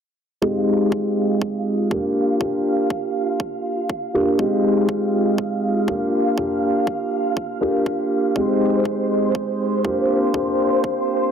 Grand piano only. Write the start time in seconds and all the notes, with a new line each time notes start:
0.42 G#3 C4 D#4 G4
1.91 A#3 D4 F4 G4
2.40 A#3 D4 F4 G4
4.14 A#3 D4 F4 G4
4.38 G#3 C4 D#4 G4
5.88 A#3 D4 F4 G4
6.37 A#3 D4 F4 G4
7.61 A#3 D4 F4 G4
8.35 G#3 C4 D#4 G4
9.84 A#3 D4 F4 G4
10.33 A#3 D4 F4 G4